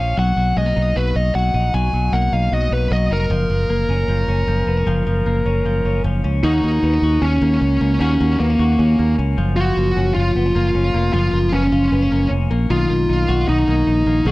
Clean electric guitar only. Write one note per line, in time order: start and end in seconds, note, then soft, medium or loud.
0.00 0.17 F3 medium
0.00 0.56 A#3 medium
0.00 0.21 C#4 medium
0.17 0.37 F#3 medium
0.37 0.95 F#3 medium
0.57 0.66 G#3 medium
0.66 2.12 A#3 medium
0.76 1.14 D#4 medium
0.96 1.35 F#3 medium
1.16 1.53 D#4 medium
1.35 1.74 F#3 medium
1.54 2.32 D#4 medium
1.74 1.94 F#3 medium
1.94 2.52 F#3 medium
2.13 3.69 A#3 medium
2.33 2.71 D#4 medium
2.53 2.91 F#3 medium
2.72 3.10 D#4 medium
2.92 3.30 F#3 medium
3.11 3.34 D#4 medium
3.31 3.49 F3 medium
3.51 4.08 F3 medium
3.70 5.26 A#3 medium
3.90 4.28 C#4 medium
4.09 4.47 F3 medium
4.29 4.67 C#4 medium
4.48 4.86 F3 medium
4.68 4.77 B3 medium
4.77 5.45 C#4 medium
4.87 5.06 F3 medium
5.07 5.64 F3 medium
5.26 6.43 A#3 medium
5.46 5.85 C#4 medium
5.66 6.03 F3 medium
5.85 6.24 C#4 medium
6.05 6.48 F3 medium
6.24 6.83 C#4 medium
6.44 6.63 A#3 medium
6.44 7.03 F#4 medium
6.64 7.42 A#3 medium
6.84 6.94 B3 medium
6.94 7.22 C#4 medium
7.03 8.01 F#4 medium
7.23 7.61 C#4 medium
7.42 7.81 A#3 medium
7.62 8.40 C#4 medium
7.81 8.01 A#3 medium
8.01 8.20 A#3 medium
8.01 8.59 F#4 medium
8.21 8.99 A#3 medium
8.40 8.50 B3 medium
8.50 8.78 C#4 medium
8.59 9.58 F#4 medium
8.79 9.18 C#4 medium
8.99 9.77 A#3 medium
9.18 9.96 C#4 medium
9.38 9.56 F3 medium
9.57 11.12 F3 medium
9.57 10.15 F4 medium
9.77 10.55 A#3 medium
9.97 10.36 C#4 medium
10.16 11.13 F4 medium
10.36 10.46 B3 medium
10.46 10.74 C#4 medium
10.55 10.94 A#3 medium
10.75 11.53 C#4 medium
10.94 11.33 A#3 medium
11.14 12.70 F3 medium
11.14 11.71 F4 medium
11.33 12.12 A#3 medium
11.53 11.63 B3 medium
11.63 11.92 C#4 medium
11.72 12.70 F4 medium
11.92 12.02 B3 medium
12.02 12.30 C#4 medium
12.12 12.50 A#3 medium
12.31 12.74 C#4 medium
12.51 12.90 A#3 medium
12.70 14.25 D#3 medium
12.90 13.67 A#3 medium
13.09 13.47 D#4 medium
13.28 14.27 F#4 medium
13.48 13.86 D#4 medium
13.68 14.07 A#3 medium
13.87 14.32 D#4 medium
14.07 14.32 A#3 medium
14.26 14.32 D#3 medium
14.26 14.32 F#4 medium